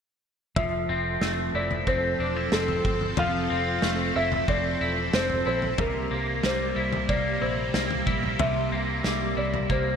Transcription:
0.56 fingered electric bass F1, clean electric guitar F3, string machine F3 C4 A4, felt piano E5, kick, floor tom
0.89 fingered electric bass F1, clean electric guitar C4
1.21 fingered electric bass F1, clean electric guitar A3, snare
1.54 fingered electric bass F1, clean electric guitar E4, felt piano D5
1.71 floor tom
1.87 fingered electric bass F1, clean electric guitar C4, felt piano C5, kick
2.19 fingered electric bass E1, clean electric guitar D4
2.36 clean electric guitar E4
2.52 fingered electric bass F1, clean electric guitar C4, felt piano A4, snare
2.68 floor tom
2.85 fingered electric bass G1, kick
3.01 floor tom
3.17 fingered electric bass F1, clean electric guitar F3, felt piano F5, floor tom
3.50 fingered electric bass F1, clean electric guitar C4
3.82 fingered electric bass F1, clean electric guitar A3, snare
4.16 fingered electric bass F1, clean electric guitar E4, felt piano E5
4.32 floor tom
4.48 fingered electric bass F1, clean electric guitar C4, felt piano D5, kick
4.81 fingered electric bass E1, clean electric guitar E4
5.13 fingered electric bass F1, clean electric guitar C4, felt piano C5, snare
5.30 floor tom
5.46 fingered electric bass A#1, clean electric guitar E4, felt piano C5
5.62 floor tom
5.78 fingered electric bass C2, string machine C3 G3 A#3, clean electric guitar C3, felt piano A#4, kick, floor tom
6.11 fingered electric bass C2, clean electric guitar A#3
6.43 fingered electric bass C2, clean electric guitar G3, felt piano C5, snare
6.76 fingered electric bass C2, clean electric guitar E4
6.93 floor tom
7.09 fingered electric bass C2, clean electric guitar A#3, felt piano D5, kick
7.42 fingered electric bass A#1, clean electric guitar E4, felt piano C5
7.74 fingered electric bass C2, clean electric guitar A#3, snare
7.90 floor tom
8.06 fingered electric bass A#1, clean electric guitar E4, kick
8.23 floor tom
8.39 fingered electric bass C2, clean electric guitar C3, felt piano E5, floor tom
8.72 fingered electric bass C2, clean electric guitar A#3
9.04 fingered electric bass C2, clean electric guitar G3, snare
9.37 fingered electric bass C2, clean electric guitar E4, felt piano D5
9.54 floor tom
9.70 fingered electric bass C2, clean electric guitar A#3, felt piano C5, kick

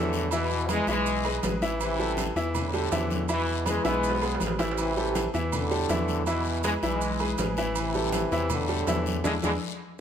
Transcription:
Already playing: analog synth bass E2, trombone section A2 D3, upright piano E3 E4 E5
0.13 short guiro, maracas
0.31 trombone section B2 E3, upright piano E3 E4 E5, low agogo, long guiro, maracas
0.50 high conga, maracas
0.69 trombone section E3 G#3, upright piano G#3 G#4 B4, high conga, low timbale, low agogo, short guiro, maracas
0.87 analog synth bass B1, upright piano E3 E4 E5, trombone section E3 G#3, low agogo, short guiro, maracas
1.06 high conga, long guiro, maracas
1.24 upright piano G#3 G#4 B4, high conga, low agogo, maracas
1.43 analog synth bass A1, upright piano G#3 G#4 B4, high conga, low timbale, low agogo, short guiro, maracas
1.61 upright piano E3 E4 E5, high conga, short guiro, maracas
1.80 trombone section C3 E3, high conga, low agogo, long guiro, maracas
1.98 upright piano G3 G4 A4, high conga, maracas
2.17 high conga, low timbale, low agogo, short guiro, maracas
2.35 analog synth bass E2, upright piano E3 E4 E5, short guiro, maracas
2.55 trombone section A2 D3, high conga, low conga, low agogo, long guiro, maracas
2.73 upright piano G3 G4 A4, high conga, low agogo, maracas
2.92 analog synth bass E2, upright piano E3 E4 E5, high conga, low timbale, short guiro, maracas
3.10 high conga, short guiro, maracas
3.29 trombone section B2 E3, upright piano E3 E4 E5, high conga, low agogo, long guiro, maracas
3.48 high conga, maracas
3.66 trombone section E3 G#3, upright piano G#3 G#4 B4, high conga, low timbale, low agogo, short guiro, maracas
3.85 analog synth bass B1, upright piano E3 E4 E5, trombone section G#3 B3, high conga, high timbale, low agogo, short guiro, maracas
4.03 high conga, long guiro, maracas
4.09 low timbale
4.21 upright piano G#3 G#4 B4, high conga, low timbale, low agogo, maracas
4.34 low timbale
4.40 analog synth bass A1, upright piano G#3 G#4 B4, high conga, low agogo, short guiro, maracas
4.46 low timbale
4.59 upright piano E3 E4 E5, high conga, low timbale, short guiro, maracas
4.71 low timbale
4.78 trombone section C3 E3, high conga, low agogo, long guiro, maracas
4.97 upright piano G3 G4 A4, high conga, maracas
5.15 high conga, low timbale, low agogo, short guiro, maracas
5.34 analog synth bass E2, upright piano E3 E4 E5, short guiro, maracas
5.51 trombone section A2 D3, high conga, low conga, low agogo, long guiro, maracas
5.71 upright piano G3 G4 A4, high conga, low agogo, maracas
5.89 analog synth bass E2, upright piano E3 E4 E5, high conga, low timbale, short guiro, maracas
6.08 high conga, short guiro, maracas
6.26 trombone section B2 E3, upright piano E3 E4 E5, high conga, low agogo, long guiro, maracas
6.45 high conga, maracas
6.64 trombone section E3 G#3, upright piano G#3 G#4 B4, high conga, low timbale, low agogo, short guiro, maracas
6.83 analog synth bass B1, upright piano E3 E4 E5, trombone section E3 G#3, high conga, low agogo, short guiro, maracas
7.01 high conga, long guiro, maracas
7.20 upright piano G#3 G#4 B4, high conga, low agogo, maracas
7.38 analog synth bass A1, upright piano G#3 G#4 B4, high conga, low timbale, low agogo, short guiro, maracas
7.57 upright piano E3 E4 E5, short guiro, maracas
7.76 trombone section C3 E3, high conga, low agogo, long guiro, maracas
7.94 upright piano G3 G4 A4, high conga, maracas
8.12 high conga, low timbale, low agogo, short guiro, maracas
8.31 analog synth bass E2, upright piano E3 E4 E5, short guiro, maracas
8.50 trombone section A2 D3, high conga, low conga, low agogo, long guiro, maracas
8.68 upright piano G3 G4 A4, high conga, low agogo, maracas
8.87 analog synth bass E2, upright piano E3 E4 E5, high conga, low timbale, short guiro, maracas
9.06 high conga, short guiro, maracas
9.24 analog synth bass E2, trombone section D3 E3 G#3, upright piano D4 E4 G#4, high conga, high timbale, long guiro, maracas
9.43 analog synth bass E2, trombone section D3 E3 G#3, upright piano D4 E4 G#4, high conga, high timbale, long guiro, maracas

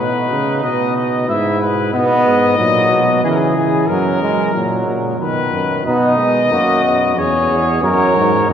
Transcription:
Already playing: bass trombone B2, flugelhorn D#4, trumpet B4
0.31 bass trombone C#3
0.63 bass trombone B2, trumpet D#5
0.96 trumpet D#5
1.28 bass trombone G#2, flugelhorn E4, trumpet E5
1.62 trumpet B4
1.94 bass trombone B2, trombone B3, trumpet D#5
2.27 bass trombone G#2
2.59 bass trombone A#2, trombone F#3
2.91 bass trombone B2
3.24 bass trombone C#3, trombone E3, trumpet G#4
3.30 trumpet A#4
3.37 trumpet G#4
3.57 trombone E3
3.88 bass trombone F#2, trombone F#3, trumpet A#4
4.22 trombone G#3
4.54 bass trombone A#2, trombone F#3
4.87 bass trombone A#2
5.19 bass trombone B2, trombone D#3, trumpet B4
5.52 bass trombone F#2
5.85 bass trombone B2, trombone B3, flugelhorn D#4, trumpet D#5
6.19 trombone G#3
6.52 bass trombone F#2, trombone A#3, flugelhorn F#4
6.85 trombone B3
7.18 bass trombone E2, trombone C#4, flugelhorn G#4, trumpet C#5
7.51 bass trombone E2
7.83 bass trombone F#2, trombone F#3, flugelhorn A#4, trumpet C#5
8.16 bass trombone G#2
8.49 bass trombone F#2, trombone A#3, trumpet F#4

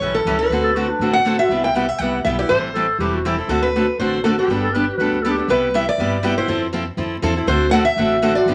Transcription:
Already playing: steel-string acoustic guitar C#5
0.01 upright bass B1, steel-string acoustic guitar E3 G3 C#4 E4 A4
0.14 steel-string acoustic guitar A4
0.25 upright bass C#2, steel-string acoustic guitar E3 G3 C#4 E4 A4
0.39 steel-string acoustic guitar C#4 E4 A4 B4
0.49 upright bass D2, steel-string acoustic guitar D3 A3 C4 F#4 A4
0.63 clarinet A4
0.75 steel-string acoustic guitar D3 A3 C4 F#4 A4, clarinet F#4
0.89 clarinet D4
0.99 upright bass A1, steel-string acoustic guitar D3 A3 C4 F#4 A4
1.13 steel-string acoustic guitar F#5
1.25 steel-string acoustic guitar D3 A3 C4 F#4 A4
1.39 steel-string acoustic guitar C4 F#4 A4 E5
1.49 upright bass C2, steel-string acoustic guitar C3 G3 B3 E4 G4
1.64 steel-string acoustic guitar G5
1.74 steel-string acoustic guitar C3 G3 B3 E4 G4 F#5
1.89 steel-string acoustic guitar E5
1.99 upright bass C2, steel-string acoustic guitar C3 G3 B3 E4 F#5
2.03 steel-string acoustic guitar G4
2.24 upright bass B1, steel-string acoustic guitar C3 G3 B3 E4 G4 E5
2.39 steel-string acoustic guitar B3 E4 G4 D5
2.49 upright bass A1, steel-string acoustic guitar E3 G3 C4 E4 A4 C5
2.74 steel-string acoustic guitar E3 G3 C4 E4 A4, clarinet A4
2.99 upright bass E1, steel-string acoustic guitar E3 G3 C4 E4 A4, clarinet G4
3.14 clarinet F#4
3.25 steel-string acoustic guitar E3 G3 C4 E4 A4, clarinet E4
3.38 steel-string acoustic guitar C4 E4 A4
3.48 upright bass D2, steel-string acoustic guitar D3 A3 C4 F#4 A4
3.63 steel-string acoustic guitar B4
3.76 steel-string acoustic guitar D3 A3 C4 F#4 A4
3.98 upright bass A1, steel-string acoustic guitar D3 A3 C4 F#4 A4 C5
4.24 steel-string acoustic guitar D3 A3 C4 F#4 A4
4.38 steel-string acoustic guitar C4 F#4 G4 A4
4.48 upright bass G1, steel-string acoustic guitar G3 B3 D4 A4
4.63 clarinet A4
4.73 steel-string acoustic guitar G3 B3 D4 A4, clarinet B4
4.94 upright bass D2, steel-string acoustic guitar F#4, clarinet B4
5.00 steel-string acoustic guitar G3 B3 D4 A4
5.22 steel-string acoustic guitar G3 B3 D4 A4, clarinet A4
5.30 clarinet G4
5.38 steel-string acoustic guitar B3 D4 A4
5.48 upright bass C2, steel-string acoustic guitar C3 G3 B3 E4 G4 B4
5.74 steel-string acoustic guitar C3 G3 B3 E4 G4 E5
5.89 steel-string acoustic guitar D5
5.98 upright bass G1, steel-string acoustic guitar C3 G3 B3 E4 G4
6.23 steel-string acoustic guitar C3 G3 B3 E4 G4
6.37 steel-string acoustic guitar B3 E4 G4 C5
6.48 upright bass F2, steel-string acoustic guitar F3 C4 E4 A4
6.73 steel-string acoustic guitar F3 C4 E4 A4
6.97 upright bass F2, steel-string acoustic guitar F3 C4 E4 A4
7.22 upright bass E2, steel-string acoustic guitar F3 C4 E4 A4
7.36 steel-string acoustic guitar C4 E4 A4
7.47 upright bass D2, steel-string acoustic guitar D3 A3 C4 F#4 A4 C5
7.71 steel-string acoustic guitar D3 A3 C4 F#4 A4 F#5
7.85 steel-string acoustic guitar E5
7.96 upright bass A1, steel-string acoustic guitar D3 A3 C4 F#4 A4
8.22 steel-string acoustic guitar D3 A3 C4 F#4 A4
8.35 steel-string acoustic guitar C4 F#4 A4 D5
8.46 upright bass G1, steel-string acoustic guitar D3 F3 B3 D4 G4

